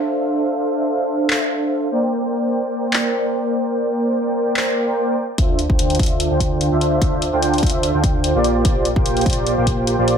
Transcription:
Already playing: D4 A4 C5 E5 F5
1.30 clap
1.91 A#3 A#4 C5 D5 G5
2.93 clap
4.57 clap
5.38 D2 D3 D4 F4 C5 E5, kick, closed hi-hat
5.59 closed hi-hat
5.70 D2 D3 D4 F4 C5 G5, kick
5.79 closed hi-hat
5.90 closed hi-hat
5.95 closed hi-hat
5.99 D2 E5, kick, closed hi-hat
6.03 closed hi-hat
6.06 closed hi-hat
6.20 closed hi-hat
6.31 D2 D3 D4 F4 C5 G5
6.40 kick, closed hi-hat
6.61 closed hi-hat
6.72 D2 D3 D4 F4 C5 E5
6.81 closed hi-hat
7.01 D2 D3 D4 F4 C5, kick, closed hi-hat
7.22 closed hi-hat
7.33 D2 D3 D4 F4 C5 G5
7.42 closed hi-hat
7.54 closed hi-hat
7.58 closed hi-hat
7.63 D2 D4 F4 C5 E5, kick, closed hi-hat
7.67 closed hi-hat
7.70 closed hi-hat
7.83 closed hi-hat
7.94 D2 D3 D4 F4 C5 G5
8.04 kick, closed hi-hat
8.24 closed hi-hat
8.35 A#1 A#3 F4 G4 C5 D5
8.44 closed hi-hat
8.65 A#1 A#3 F4 G4 C5 D5, kick, closed hi-hat
8.85 closed hi-hat
8.96 A#1 A#3 F4 G4 C5 G5, kick
9.06 closed hi-hat
9.17 closed hi-hat
9.21 closed hi-hat
9.26 A#1 A#3 F4 G4 C5 D5, kick, closed hi-hat
9.30 closed hi-hat
9.33 closed hi-hat
9.47 closed hi-hat
9.57 A#1 A#3 F4 G4 C5 G5
9.67 kick, closed hi-hat
9.87 closed hi-hat
9.98 A#1 A#3 F4 G4 C5 D5
10.08 closed hi-hat

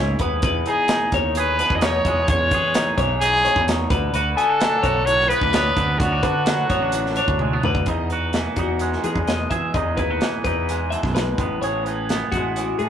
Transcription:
Already playing: C#2 G#2 E3 G#4 C#5
0.00 E4
0.19 D#2 B3 B4, kick, closed hi-hat
0.42 E2 B4, kick, closed hi-hat
0.66 D#4 G#4, closed hi-hat
0.88 D#4, snare, closed hi-hat
1.12 D#2 C#5, kick, closed hi-hat
1.35 G#4 B4, closed hi-hat
1.59 B2 B4, closed hi-hat
1.70 E2, kick
1.75 D#5
1.81 D#4 C#5, snare, closed hi-hat
2.05 E2 G#3 D#5, kick, closed hi-hat
2.28 E2 C#5, kick, closed hi-hat
2.51 E3 G#4 B4, kick, closed hi-hat
2.74 D#4, snare, closed hi-hat
2.98 B1 E3 C#5, kick, closed hi-hat
3.21 D#4 G#4, closed hi-hat
3.45 B2 C#5, closed hi-hat
3.55 E2, kick
3.68 D#4, snare, closed hi-hat
3.90 D2 D3 B4, kick, closed hi-hat
4.13 D2 F#4 B4, closed hi-hat
4.37 B3 A4 G#5, closed hi-hat
4.49 D4
4.61 F#3, snare, closed hi-hat
4.83 B1 F#4 C#5, kick, closed hi-hat
5.06 A2 C#5, closed hi-hat
5.20 snare
5.29 B3 B4, closed hi-hat
5.41 D2 D4, kick
5.53 B3 C#5, snare, closed hi-hat
5.76 D2 D3 D5, kick, closed hi-hat
5.99 D2 B3 F#4 C#5, kick, closed hi-hat
6.12 D4
6.23 D3 D4 B4, kick, closed hi-hat
6.46 F#3, snare, closed hi-hat
6.70 A1 B3 C#5, kick, closed hi-hat
6.82 D4
6.92 A2, closed hi-hat
7.06 snare
7.16 D4 C#5, closed hi-hat
7.28 D2, kick
7.39 G#3, high tom
7.53 B3
7.63 D2 D3 B4, mid tom
7.75 kick
7.86 E2 D#4 D#5, kick, closed hi-hat
8.10 F#4 B4, closed hi-hat
8.33 E3, snare, closed hi-hat
8.56 E2 D#4 F#4, kick, closed hi-hat
8.79 G#3, closed hi-hat
8.92 snare
9.04 B2 E3 G#4, closed hi-hat
9.16 E2, kick
9.27 D#5, snare, closed hi-hat
9.50 E3 G#4 E5, kick, closed hi-hat
9.74 E2 D#4 D#5, kick, closed hi-hat
9.97 D#2 E4 B4, kick, closed hi-hat
10.10 F#4
10.21 E3, snare, closed hi-hat
10.44 E2 D#4 B4, kick, closed hi-hat
10.69 G#3, closed hi-hat
10.90 B2 E5, closed hi-hat
11.03 B1, kick, snare
11.15 B4, snare, closed hi-hat
11.38 A1 A2 B3, kick, closed hi-hat
11.62 A1 G#4 C#5, closed hi-hat
11.84 E3 B4, closed hi-hat
12.09 B3, snare, closed hi-hat
12.32 A1 G#3 F#4, kick, closed hi-hat
12.56 E3, closed hi-hat
12.79 A2 G#4, closed hi-hat

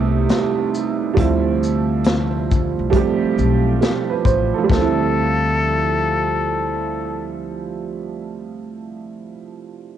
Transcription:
Already playing: C2 C3 G3 A3 B3 D#4 E4
0.29 snare, closed hi-hat
0.75 shaker
1.14 F3 G3 A3, kick
1.18 D2 C4 E4, closed hi-hat
1.63 shaker
2.04 snare, closed hi-hat
2.51 kick, shaker
2.79 C2
2.90 F3 G3 A3, kick, closed hi-hat
2.94 C4 G4
3.23 muted upright bass stroke
3.38 B1, shaker
3.81 G4, snare, closed hi-hat
4.09 B4
4.25 A1 C5, kick, shaker
4.54 F3 A4
4.64 G3
4.69 D2 A3 A4, kick, snare
4.75 C4
4.80 E4

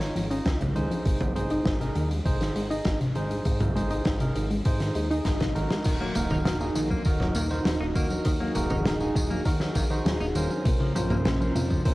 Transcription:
Already playing: G#1 D#4 F4 C#5
0.00 D#3, snare, closed hi-hat
0.16 G#1 F3, closed hi-hat
0.31 C#4 D#4 F4 D#5, closed hi-hat
0.46 C#2 C#4, kick, snare, closed hi-hat
0.60 C#2 C#3, closed hi-hat, mid tom
0.75 C#2 D#3 D#4 G#4 C5, closed hi-hat
0.91 F3, closed hi-hat
1.05 G#1 C3, kick, closed hi-hat
1.21 D#3, closed hi-hat, mid tom
1.36 G#1 G#3 D#4 G#4 C5, closed hi-hat
1.50 D#4, closed hi-hat
1.66 G#1 D#4, kick, snare, closed hi-hat
1.81 C3 D#4 G#4 A#4, closed hi-hat
1.95 D#2 D#3, closed hi-hat
2.11 G#3, closed hi-hat
2.26 G#1 C3 D#4 G#4 C5, kick, closed hi-hat
2.41 D#3, snare, closed hi-hat
2.55 G#1 G#3, closed hi-hat
2.70 D#4 G#4 D#5, closed hi-hat
2.85 G#1 D#4, kick, snare, closed hi-hat
3.00 G#1 C3, closed hi-hat
3.15 G#1 D#3 D#4 G#4 C5, closed hi-hat
3.31 G#3, closed hi-hat
3.45 G#2 C3, kick, closed hi-hat
3.60 D#3, closed hi-hat, mid tom
3.75 G#1 G#3 D#4 G#4 C5, closed hi-hat
3.90 D#4, closed hi-hat
4.05 G#1 D#4, kick, snare, closed hi-hat
4.20 C3 D#4 G#4 A#4, closed hi-hat
4.35 G#1 D#3, closed hi-hat
4.50 G#3, closed hi-hat
4.65 G#2 C3 D#4 G#4 C5, kick, closed hi-hat, swell
4.80 D#3, snare, closed hi-hat
4.95 D#2 G#3, closed hi-hat
5.11 D#4 G#4 D#5, closed hi-hat
5.25 G#1 D#4, kick, snare, closed hi-hat
5.40 G#1 C3, snare, closed hi-hat, mid tom
5.55 G#1 D#3 D#4 F#4 A#4, closed hi-hat
5.70 G#3, snare, closed hi-hat
5.84 D#1 D#3 D#4 F#4 A#4, kick, closed hi-hat, crash, tambourine
6.01 F#3 A#3
6.15 D#1 A#3 D#4 F#4 A#4, closed hi-hat, mid tom, tambourine
6.30 D#3 D#4, mid tom, tambourine
6.45 D#1 D#3 F#3, snare, closed hi-hat, tambourine
6.61 A#3 D#4 F#4 G#4, tambourine
6.75 A#1 D#3, closed hi-hat, tambourine
6.91 F#3 A#3, kick, tambourine
7.05 D#1 D#3 D#4 F#4 A#4, kick, closed hi-hat, tambourine
7.20 F#3, snare, mid tom
7.35 D#1 D#3 A#3, closed hi-hat, tambourine
7.50 D#3 D#4 F#4 C5, tambourine
7.65 D#1 F#3, snare, closed hi-hat, tambourine
7.80 D#1 A#3 D#4
7.95 D#1 D#3 A#3 D#4 F#4 A#4, kick, closed hi-hat, tambourine
8.10 F#3, tambourine
8.25 D#2 D#3 G#4, kick, closed hi-hat, tambourine
8.40 F#3 A#3
8.55 D#1 A#3 D#4 F#4 A#4, closed hi-hat, mid tom, tambourine
8.70 D#3 D#4, mid tom, tambourine
8.85 D#1 D#3 F#3, snare, closed hi-hat, tambourine
9.00 A#3 D#4 F#4 G#4, tambourine
9.15 D#1 D#3, kick, closed hi-hat, tambourine
9.30 F#3 A#3, tambourine
9.45 D#2 D#3 D#4 F#4 A#4, kick, closed hi-hat, tambourine
9.60 F#3, snare, tambourine
9.75 A#1 D#3 A#3, kick, closed hi-hat, tambourine
9.90 D#3 D#4 F#4 C5, tambourine
10.05 D#1 F#3, snare, closed hi-hat, tambourine
10.20 D#1 A#3 D#4, tambourine
10.35 D#1 D#3 A#3 C#4 A#4 C5, closed hi-hat, tambourine
10.50 F#3, tambourine
10.65 A#1 A#2 C3 A#3 C#4 F4 A#4, kick, closed hi-hat, tambourine
10.80 C#3 F3
10.95 A#1 F3 C#4 A#4 C5, closed hi-hat, mid tom, tambourine
11.10 C3 A#3, mid tom, tambourine
11.25 A#1 A#2 C#3, snare, closed hi-hat, tambourine
11.40 F3 C#4 A#4 C5, tambourine
11.55 F2 A#2 C3, closed hi-hat, tambourine
11.70 C#3 F3, kick, tambourine
11.85 A#1 A#2 C3 C#4 A#4 C5, kick, closed hi-hat, tambourine

